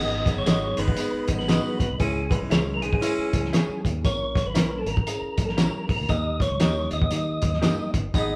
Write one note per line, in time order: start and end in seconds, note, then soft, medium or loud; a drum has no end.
0.00 0.30 G#1 loud
0.00 0.19 B3 medium
0.00 0.27 B3 medium
0.00 0.20 D#4 loud
0.00 0.27 D#4 medium
0.00 0.20 G#4 loud
0.00 0.27 G#4 medium
0.00 0.34 D#5 loud
0.11 muted conga soft
0.26 0.43 B3 medium
0.26 0.43 D#4 medium
0.26 0.43 G#4 medium
0.26 kick loud
0.26 snare soft
0.26 closed hi-hat medium
0.36 0.45 G1 medium
0.36 0.79 C#5 medium
0.36 high conga medium
0.46 0.72 G#1 medium
0.46 0.71 B3 medium
0.46 0.78 B3 medium
0.46 0.71 D#4 medium
0.46 0.79 D#4 medium
0.46 0.71 F#4 medium
0.46 0.57 G#4 medium
0.46 0.79 G#4 medium
0.46 0.58 B4 medium
0.46 0.58 D#5 loud
0.46 snare loud
0.46 closed hi-hat loud
0.46 tambourine loud
0.62 muted conga soft
0.62 high conga medium
0.77 0.95 G1 medium
0.77 1.26 G#3 loud
0.77 1.25 B3 loud
0.77 1.25 D#4 loud
0.77 1.35 B4 loud
0.77 snare soft
0.77 closed hi-hat medium
0.77 low conga medium
0.88 kick loud
0.97 1.30 B3 medium
0.97 1.30 D#4 medium
0.97 1.31 G#4 medium
0.97 closed hi-hat loud
0.97 tambourine medium
1.13 muted fingered electric bass stroke soft
1.28 1.59 G#1 medium
1.28 1.45 B3 medium
1.28 1.45 D#4 medium
1.28 1.45 G#4 loud
1.28 kick medium
1.28 closed hi-hat medium
1.28 high conga medium
1.39 1.79 B4 medium
1.39 snare soft
1.48 1.87 B3 loud
1.48 1.81 B3 medium
1.48 1.87 D#4 medium
1.48 1.82 D#4 medium
1.48 1.87 F#4 loud
1.48 1.60 G#4 medium
1.48 1.82 G#4 medium
1.48 1.60 B4 medium
1.48 1.60 D#5 medium
1.48 snare loud
1.48 closed hi-hat medium
1.48 tambourine medium
1.64 muted conga soft
1.64 high conga medium
1.79 1.88 A#1 medium
1.79 1.99 B4 medium
1.79 kick medium
1.79 closed hi-hat medium
1.79 low conga medium
1.90 1.99 C2 medium
1.99 2.35 C#2 loud
1.99 2.24 G#3 loud
1.99 2.25 C#4 loud
1.99 2.32 C#4 medium
1.99 2.25 E4 loud
1.99 2.32 E4 medium
1.99 2.32 G#4 medium
1.99 2.33 G#4 medium
1.99 kick loud
1.99 closed hi-hat medium
1.99 tambourine medium
1.99 muted conga soft
1.99 low conga medium
2.15 muted conga soft
2.29 2.78 E3 medium
2.29 2.78 G#3 medium
2.29 2.78 C#4 medium
2.29 2.40 B4 medium
2.29 kick loud
2.29 closed hi-hat medium
2.41 2.50 B1 medium
2.41 high conga medium
2.50 2.83 C#2 medium
2.50 2.83 C#4 medium
2.50 2.62 E4 medium
2.50 2.83 E4 medium
2.50 2.63 G#4 medium
2.50 2.84 G#4 medium
2.50 2.62 A#4 medium
2.50 2.63 C#5 medium
2.50 snare loud
2.50 closed hi-hat loud
2.50 tambourine medium
2.67 muted conga soft
2.67 high conga medium
2.74 2.82 A#4 medium
2.81 2.99 B1 medium
2.81 2.98 G#3 medium
2.81 2.98 B3 medium
2.81 2.98 D#4 loud
2.81 3.81 G#4 medium
2.81 closed hi-hat medium
2.81 low conga medium
2.93 kick loud
3.01 3.50 G#3 loud
3.01 3.34 C#4 medium
3.01 3.50 C#4 loud
3.01 3.50 E4 loud
3.01 3.35 E4 medium
3.01 3.35 B4 medium
3.01 closed hi-hat loud
3.01 tambourine medium
3.01 muted conga soft
3.17 muted fingered electric bass stroke soft
3.17 muted conga soft
3.33 3.50 C#2 medium
3.33 kick medium
3.33 closed hi-hat medium
3.33 high conga medium
3.45 snare soft
3.52 3.85 C#4 medium
3.52 3.64 E4 medium
3.52 3.86 E4 medium
3.52 3.86 G#4 loud
3.52 3.65 G#4 loud
3.52 3.65 C#5 medium
3.52 snare loud
3.52 closed hi-hat medium
3.52 tambourine medium
3.69 muted fingered electric bass stroke soft
3.69 muted conga soft
3.69 high conga medium
3.85 4.02 D#2 medium
3.85 kick medium
3.85 closed hi-hat medium
3.85 low conga medium
4.03 4.39 A#1 loud
4.03 4.36 C#4 medium
4.03 4.37 E4 medium
4.03 4.37 A#4 medium
4.03 4.47 C#5 medium
4.03 kick loud
4.03 closed hi-hat medium
4.03 tambourine medium
4.03 low conga medium
4.20 muted conga soft
4.36 kick loud
4.36 snare soft
4.36 closed hi-hat medium
4.46 4.54 G#1 medium
4.46 4.80 B4 medium
4.46 high conga medium
4.55 4.82 A#1 medium
4.55 4.88 C#4 medium
4.55 4.67 E4 medium
4.55 4.88 E4 medium
4.55 4.67 A#4 medium
4.55 4.89 A#4 medium
4.55 4.67 C#5 medium
4.55 snare loud
4.55 closed hi-hat loud
4.55 tambourine medium
4.72 muted conga soft
4.72 high conga medium
4.78 4.87 A4 medium
4.86 5.04 G#1 medium
4.86 5.45 A#4 medium
4.86 closed hi-hat medium
4.86 low conga medium
4.97 kick loud
5.07 5.39 C#4 medium
5.07 5.40 E4 medium
5.07 5.40 G#4 medium
5.07 closed hi-hat loud
5.07 tambourine medium
5.22 muted fingered electric bass stroke medium
5.38 5.68 A#1 loud
5.38 kick medium
5.38 closed hi-hat medium
5.38 high conga medium
5.44 5.49 A4 medium
5.49 5.87 A#4 medium
5.49 snare soft
5.57 5.90 C#4 medium
5.57 5.69 E4 medium
5.57 5.91 E4 medium
5.57 5.91 G4 medium
5.57 5.69 A#4 medium
5.57 5.70 C#5 medium
5.57 snare loud
5.57 closed hi-hat medium
5.57 tambourine loud
5.73 muted conga soft
5.73 high conga medium
5.88 5.98 B1 medium
5.88 6.11 A#4 medium
5.88 kick medium
5.88 open hi-hat medium
5.88 low conga medium
6.00 6.08 D2 medium
6.08 6.44 D#2 loud
6.08 6.42 A#3 medium
6.08 6.42 D#4 medium
6.08 6.42 G4 medium
6.08 6.42 D#5 loud
6.08 kick loud
6.08 closed hi-hat medium
6.08 tambourine medium
6.08 muted conga soft
6.08 low conga medium
6.24 muted conga soft
6.40 6.60 C#5 loud
6.40 kick loud
6.40 snare soft
6.40 closed hi-hat medium
6.49 6.59 C#2 medium
6.49 high conga medium
6.60 6.87 D#2 medium
6.60 6.92 A#3 medium
6.60 6.93 D#4 medium
6.60 6.72 G4 medium
6.60 6.93 G4 medium
6.60 6.72 A#4 medium
6.60 6.90 C#5 loud
6.60 6.72 D#5 medium
6.60 snare loud
6.60 closed hi-hat loud
6.60 tambourine medium
6.75 muted conga soft
6.75 high conga medium
6.90 7.09 D#2 medium
6.90 7.91 D#5 medium
6.90 closed hi-hat medium
6.90 low conga medium
7.02 kick loud
7.10 7.38 D#3 loud
7.10 7.44 A#3 medium
7.10 7.44 D#4 medium
7.10 7.44 G4 medium
7.10 closed hi-hat loud
7.10 tambourine medium
7.10 muted conga soft
7.10 high conga medium
7.42 7.60 D#2 loud
7.42 kick medium
7.42 closed hi-hat medium
7.42 high conga medium
7.54 snare soft
7.61 7.77 G2 medium
7.61 7.95 A#3 medium
7.61 7.95 D#4 medium
7.61 7.74 G4 medium
7.61 7.95 G4 medium
7.61 7.74 A#4 medium
7.61 7.75 D#5 medium
7.61 snare loud
7.61 closed hi-hat medium
7.61 tambourine medium
7.78 muted conga soft
7.78 high conga medium
7.94 8.11 G1 medium
7.94 kick medium
7.94 closed hi-hat medium
7.94 low conga medium
8.14 8.36 G#1 loud
8.14 8.36 B3 medium
8.14 8.36 B3 loud
8.14 8.36 D#4 loud
8.14 8.36 D#4 medium
8.14 8.36 G#4 loud
8.14 8.36 G#4 medium
8.14 8.36 D#5 loud
8.14 kick loud
8.14 closed hi-hat medium
8.14 tambourine medium
8.14 low conga medium
8.28 muted conga soft